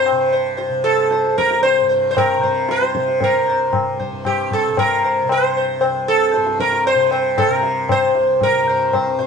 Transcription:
0.00 1.26 C2 medium
0.00 1.81 G2 medium
0.00 0.12 C3 medium
0.00 0.31 C5 loud
0.06 tabla na medium
0.12 0.69 C3 medium
0.33 0.56 C5 soft
0.57 0.82 C5 soft
0.57 tabla te medium
0.69 2.37 C3 medium
0.84 1.37 A4 medium
0.84 tabla te medium
1.11 1.36 C5 soft
1.11 tabla te medium
1.24 3.52 C2 medium
1.24 tabla te medium
1.38 1.62 A#4 medium
1.38 tabla ke medium
1.51 tabla te medium
1.63 1.88 C5 medium
1.63 tabla tin medium
1.81 4.11 G2 medium
1.89 2.10 C5 soft
2.11 2.17 C5 medium
2.17 2.71 A#4 medium
2.17 tabla na medium
2.17 tabla ge medium
2.37 2.96 C3 medium
2.43 2.67 C5 soft
2.43 tabla ge medium
2.69 3.23 C5 medium
2.69 tabla te medium
2.82 tabla te medium
2.95 4.66 C3 medium
2.95 tabla ke medium
3.08 tabla te soft
3.21 3.97 A#4 medium
3.21 tabla tin loud
3.21 tabla ge medium
3.49 5.81 C2 medium
3.49 3.73 C5 soft
3.73 tabla na medium
3.73 tabla ge medium
4.00 4.24 C5 soft
4.00 tabla ge medium
4.11 6.36 G2 medium
4.25 4.53 G4 medium
4.25 tabla na medium
4.25 tabla ge medium
4.51 4.79 A4 medium
4.51 tabla ge medium
4.66 5.24 C3 medium
4.77 5.31 A#4 medium
4.77 tabla na medium
4.77 tabla ge medium
5.04 5.28 C5 soft
5.24 6.95 C3 medium
5.29 5.56 C5 medium
5.29 tabla na medium
5.57 5.80 C5 soft
5.81 8.06 C2 medium
5.81 6.06 C5 soft
5.81 tabla na medium
6.08 6.60 A4 medium
6.34 8.61 G2 medium
6.34 6.58 C5 soft
6.34 tabla te medium
6.47 tabla te medium
6.60 6.86 A#4 medium
6.60 tabla ke soft
6.72 tabla te medium
6.86 7.11 C5 medium
6.86 tabla tin medium
6.95 7.48 C3 medium
7.11 7.36 C5 soft
7.11 tabla na medium
7.38 7.52 A4 medium
7.38 tabla na medium
7.38 tabla ge medium
7.48 9.18 C3 medium
7.48 7.91 A#4 medium
7.63 tabla te medium
7.89 8.43 C5 medium
7.89 tabla na medium
7.89 tabla ge medium
8.06 9.27 C2 medium
8.15 tabla te medium
8.41 9.16 A#4 medium
8.41 tabla tin loud
8.41 tabla ge medium
8.62 9.27 G2 medium
8.69 8.93 C5 soft
8.93 9.17 C5 soft
8.93 tabla na medium
8.93 tabla ge medium
9.18 9.27 C3 medium
9.18 9.27 C5 soft
9.18 tabla te medium

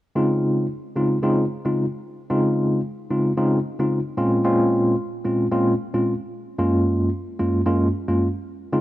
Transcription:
0.15 0.66 C#3 medium
0.15 0.66 G#3 medium
0.15 0.66 C4 medium
0.15 0.66 D#4 medium
0.15 0.66 F4 medium
0.96 1.17 C#3 medium
0.96 1.17 G#3 medium
0.96 1.17 C4 medium
0.96 1.17 D#4 medium
0.96 1.17 F4 medium
1.23 1.44 C#3 medium
1.23 1.44 G#3 medium
1.23 1.44 C4 medium
1.23 1.44 D#4 medium
1.23 1.44 F4 medium
1.65 1.84 C#3 medium
1.65 1.84 G#3 medium
1.65 1.84 C4 medium
1.65 1.84 D#4 medium
1.65 1.84 F4 medium
2.30 2.80 C#3 medium
2.30 2.80 G#3 medium
2.30 2.80 C4 medium
2.30 2.80 D#4 medium
2.30 2.80 F4 medium
3.10 3.32 C#3 medium
3.10 3.32 G#3 medium
3.10 3.32 C4 medium
3.10 3.32 D#4 medium
3.10 3.32 F4 medium
3.37 3.58 C#3 medium
3.37 3.58 G#3 medium
3.37 3.59 C4 medium
3.37 3.59 D#4 medium
3.37 3.59 F4 medium
3.79 3.98 C#3 medium
3.79 3.99 G#3 medium
3.79 3.99 C4 medium
3.79 3.99 D#4 medium
3.79 3.99 F4 medium
4.17 4.42 A#2 medium
4.17 4.42 G#3 medium
4.17 4.43 C4 medium
4.17 4.43 C#4 medium
4.17 4.43 F4 loud
4.44 4.94 A#2 medium
4.44 4.94 G#3 medium
4.44 4.94 C4 medium
4.44 4.95 C#4 medium
4.44 4.95 F4 loud
5.25 5.46 A#2 medium
5.25 5.46 G#3 medium
5.25 5.46 C4 medium
5.25 5.46 C#4 medium
5.25 5.46 F4 medium
5.51 5.73 A#2 medium
5.51 5.73 G#3 medium
5.51 5.73 C4 medium
5.51 5.73 C#4 medium
5.51 5.73 F4 loud
5.94 6.13 A#2 medium
5.94 6.13 G#3 medium
5.94 6.13 C4 medium
5.94 6.13 C#4 medium
5.94 6.13 F4 medium
6.58 7.08 F#2 medium
6.58 7.09 G#3 medium
6.58 7.09 A#3 medium
6.58 7.09 C#4 medium
6.58 7.09 F4 medium
7.39 7.60 F#2 medium
7.39 7.60 G#3 medium
7.39 7.60 A#3 medium
7.39 7.60 C#4 medium
7.39 7.60 F4 medium
7.66 7.87 F#2 medium
7.66 7.87 G#3 medium
7.66 7.87 A#3 medium
7.66 7.87 C#4 medium
7.66 7.87 F4 medium
8.08 8.27 F#2 medium
8.08 8.27 G#3 medium
8.08 8.27 A#3 medium
8.08 8.27 C#4 medium
8.08 8.27 F4 medium
8.73 8.81 C#3 medium
8.73 8.81 G#3 medium
8.73 8.81 C4 medium
8.73 8.81 D#4 medium
8.73 8.81 F4 medium

